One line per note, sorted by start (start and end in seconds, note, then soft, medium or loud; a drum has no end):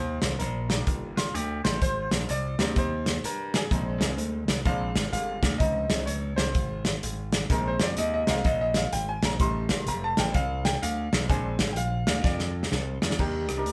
0.00 0.18 D#2 loud
0.00 0.41 C5 medium
0.22 0.37 C2 medium
0.22 snare loud
0.22 closed hi-hat medium
0.39 0.80 A#1 medium
0.39 0.67 A#4 medium
0.39 closed hi-hat medium
0.69 1.31 D#3 medium
0.69 1.31 A#3 medium
0.69 1.32 D4 medium
0.69 snare loud
0.69 closed hi-hat medium
0.87 1.27 G1 loud
0.87 kick loud
0.87 closed hi-hat medium
1.17 1.34 F4 medium
1.17 snare medium
1.17 closed hi-hat medium
1.34 1.60 D2 medium
1.34 1.63 G4 medium
1.34 closed hi-hat medium
1.64 1.79 A1 medium
1.64 2.09 C5 medium
1.64 snare loud
1.64 closed hi-hat medium
1.82 2.07 G#1 medium
1.82 2.31 C5 loud
1.82 kick loud
1.82 closed hi-hat medium
2.11 2.26 A#1 medium
2.11 snare loud
2.11 closed hi-hat medium
2.29 2.55 C2 medium
2.29 2.79 D5 loud
2.29 closed hi-hat medium
2.58 2.74 D2 medium
2.58 2.87 G3 medium
2.58 2.87 A#3 medium
2.58 2.87 C4 medium
2.58 snare loud
2.58 closed hi-hat medium
2.76 3.17 D#2 loud
2.76 3.26 C5 medium
2.76 kick loud
2.76 closed hi-hat medium
3.06 snare medium
3.06 closed hi-hat medium
3.24 3.64 G2 medium
3.24 3.56 A#4 medium
3.24 closed hi-hat medium
3.54 4.15 G#4 medium
3.54 snare loud
3.54 closed hi-hat medium
3.71 3.97 A#1 loud
3.71 4.62 G#3 medium
3.71 4.62 C4 soft
3.71 4.62 D#4 medium
3.71 kick loud
3.71 closed hi-hat loud
4.01 4.18 C2 medium
4.01 snare loud
4.01 closed hi-hat medium
4.18 4.44 D2 medium
4.18 closed hi-hat medium
4.48 4.63 C2 medium
4.48 snare loud
4.48 closed hi-hat medium
4.65 4.91 A#1 loud
4.65 5.39 G#3 medium
4.65 5.39 C4 medium
4.65 5.40 D4 medium
4.65 5.10 F5 loud
4.65 kick loud
4.65 closed hi-hat medium
4.95 5.10 G#1 medium
4.95 snare loud
4.95 closed hi-hat medium
5.12 5.38 G1 medium
5.12 5.57 F5 loud
5.12 closed hi-hat medium
5.43 5.58 D2 medium
5.43 kick medium
5.43 snare loud
5.43 closed hi-hat medium
5.58 5.86 C#2 loud
5.58 6.34 F3 medium
5.58 6.34 C4 soft
5.58 6.34 D#4 medium
5.58 6.08 D#5 loud
5.58 kick loud
5.58 closed hi-hat medium
5.90 6.05 C2 medium
5.90 snare loud
5.90 closed hi-hat medium
6.06 6.33 C#2 medium
6.06 6.38 C#5 medium
6.06 closed hi-hat medium
6.36 6.52 C2 medium
6.36 6.98 C5 medium
6.36 snare loud
6.36 closed hi-hat medium
6.55 6.95 G#1 medium
6.55 kick loud
6.55 closed hi-hat medium
6.85 snare loud
6.85 closed hi-hat medium
7.03 7.43 G#1 medium
7.03 closed hi-hat medium
7.32 snare loud
7.32 closed hi-hat medium
7.50 7.76 A#1 loud
7.50 8.25 G#3 medium
7.50 8.26 C4 medium
7.50 8.26 D#4 medium
7.50 7.67 A#4 medium
7.50 kick loud
7.50 closed hi-hat medium
7.68 7.83 C5 medium
7.80 7.95 F2 medium
7.80 7.98 D5 medium
7.80 snare loud
7.80 closed hi-hat medium
7.97 8.23 D#2 medium
7.97 8.12 D#5 medium
7.97 closed hi-hat medium
8.14 8.30 D#5 medium
8.26 8.43 C2 medium
8.26 8.42 G#3 soft
8.26 8.43 C4 soft
8.26 8.43 D#4 medium
8.26 8.46 F5 medium
8.26 snare loud
8.26 closed hi-hat medium
8.44 8.85 A#1 loud
8.44 8.60 D#5 medium
8.44 kick loud
8.44 closed hi-hat medium
8.61 8.77 D#5 medium
8.74 8.91 F5 medium
8.74 snare loud
8.74 closed hi-hat medium
8.93 9.18 G#1 medium
8.93 9.09 G5 loud
8.93 closed hi-hat loud
9.09 9.25 G#5 loud
9.22 9.37 A#1 medium
9.22 9.41 A#5 medium
9.22 snare loud
9.22 closed hi-hat medium
9.40 9.65 A1 loud
9.40 10.13 G3 medium
9.40 10.14 A3 medium
9.40 10.14 D#4 medium
9.40 9.84 C6 loud
9.40 kick loud
9.40 closed hi-hat medium
9.69 9.84 G1 medium
9.69 snare loud
9.69 closed hi-hat medium
9.87 10.13 F1 loud
9.87 10.04 A#5 loud
9.87 closed hi-hat medium
10.04 10.20 A5 loud
10.17 10.32 A1 medium
10.17 10.35 G5 loud
10.17 snare loud
10.17 closed hi-hat medium
10.34 10.75 C2 loud
10.34 10.66 F5 loud
10.34 kick loud
10.34 closed hi-hat medium
10.65 10.83 G5 loud
10.65 snare loud
10.65 closed hi-hat medium
10.82 11.08 D2 medium
10.82 11.31 F5 loud
10.82 closed hi-hat medium
11.13 11.27 B1 medium
11.13 snare loud
11.13 closed hi-hat medium
11.29 11.55 A#1 loud
11.29 11.64 G#3 medium
11.29 11.65 C4 medium
11.29 11.65 D4 medium
11.29 11.70 G#5 medium
11.29 kick loud
11.29 closed hi-hat loud
11.59 11.77 G#1 medium
11.59 snare loud
11.59 closed hi-hat medium
11.73 11.77 G5 medium
11.73 closed hi-hat medium
11.77 12.03 A#1 medium
11.77 12.06 F5 medium
12.07 12.22 D2 medium
12.07 12.25 F5 loud
12.07 snare loud
12.07 closed hi-hat medium
12.24 12.65 F2 loud
12.24 12.53 D5 medium
12.24 kick loud
12.24 snare medium
12.39 snare medium
12.63 snare medium
12.72 12.98 C2 medium
12.72 snare medium
13.02 13.17 E2 medium
13.02 snare loud
13.11 snare medium
13.18 13.49 D#2 medium
13.18 13.72 D#3 medium
13.18 13.50 D4 medium
13.18 13.50 D#4 medium
13.18 13.51 G4 medium
13.18 13.72 G4 medium
13.18 13.51 A#4 medium
13.18 kick loud
13.18 crash medium
13.49 13.66 C2 medium
13.49 cross-stick medium
13.49 closed hi-hat medium
13.57 13.72 D4 medium
13.57 13.72 D#4 medium
13.57 13.72 G4 medium
13.57 13.72 A#4 medium
13.66 13.72 D2 medium
13.66 closed hi-hat medium